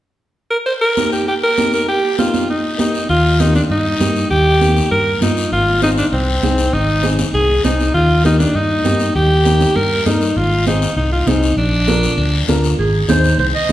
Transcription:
0.51 A#4
0.66 C5, long guiro
0.81 A#4
0.97 A#3 D#4 G4, high conga, short guiro
1.12 G4, short guiro
1.28 G4, long guiro
1.43 A#4
1.57 A#3 D#4 G4, high conga, short guiro
1.73 A#4, short guiro
1.88 G4, long guiro
2.18 A#3 D#4 F4 G4, high conga, short guiro
2.34 high conga, short guiro
2.49 D#4, long guiro
2.78 A#3 D#4 G4, high conga, short guiro
2.94 short guiro
3.09 D#2 F4, long guiro
3.40 A#3 D#4 G4, high conga, short guiro
3.55 D4, high conga, short guiro
3.70 G2 D#4, long guiro
4.00 G2 A#3 D#4 G4, high conga, short guiro
4.16 short guiro
4.30 D#2 G4, long guiro
4.61 A#3 D#4 G4, high conga, short guiro
4.77 short guiro
4.91 G2 A#4, long guiro
5.21 G2 A#3 D#4 F4, high conga, short guiro
5.37 short guiro
5.52 G#1 F4, long guiro
5.82 C4 D#4 G#4, high conga, short guiro
5.98 D4, short guiro
6.12 C2 C4, long guiro
6.43 C2 C4 D#4 G#4, high conga, short guiro
6.58 short guiro
6.73 G#1 D#4, long guiro
7.02 C4 D#4 G#4, high conga, short guiro
7.19 high conga, short guiro
7.34 C2 G#4, long guiro
7.64 C2 C4 D#4 G#4, high conga, short guiro
7.80 short guiro
7.94 D#2 F4, long guiro
8.24 A#3 D#4 G4, high conga, short guiro
8.39 D4, high conga, short guiro
8.55 G2 D#4, long guiro
8.84 G2 A#3 D#4 G4, high conga, short guiro
9.00 short guiro
9.15 D#2 G4, long guiro
9.45 A#3 D#4 G4, high conga, short guiro
9.61 high conga, short guiro
9.76 G2 A#4, long guiro
10.06 G2 A#3 D#4 A#4, high conga, short guiro
10.21 short guiro
10.36 G#1 F4, long guiro
10.67 C4 D#4 G#4, high conga, short guiro
10.82 short guiro
10.96 C2 D#4, long guiro
11.13 F4
11.27 C2 C4 D#4 G#4, high conga, short guiro
11.43 short guiro
11.57 A#1 D4, long guiro
11.87 D4 F4 A#4, high conga, short guiro
12.03 short guiro
12.17 D2, long guiro
12.48 D2 D4 F4 A#4, high conga, short guiro
12.64 short guiro
12.79 G#1 G#4, long guiro
13.08 D#2 D#4 G#4 C5, high conga, short guiro
13.24 short guiro
13.38 C2 C5, long guiro
13.55 D#5
13.69 D#2 D#4 G#4

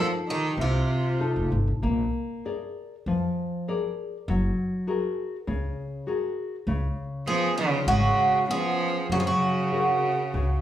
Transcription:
Already playing: F3 D#4 F4 A4
0.27 D#3 G4
0.57 C2 C3
0.61 F4
1.19 D#4 F4 A4
1.36 F1
1.52 G1
1.67 A1
1.83 A#1 A#3
2.45 G#4 A#4 D5
3.06 F2 F3
3.68 G#4 A#4 D5
4.28 F#1 F#3
4.87 F#4 G#4 A#4
5.47 C#2 C#3
6.07 F#4 G#4 A#4
6.67 C#2 C#3
7.27 F3 B3 C#4 F4 G#4
7.58 C#3 F4
7.87 G#1 C#3 G#3 F#4
8.49 F3 B3 C#4 F4 G#4
9.10 F#2 C#3 F#3 F#4
9.19 F3 G#4
9.27 C#3 F#4
9.72 F#4 G#4 A#4
10.34 C#2 C#3

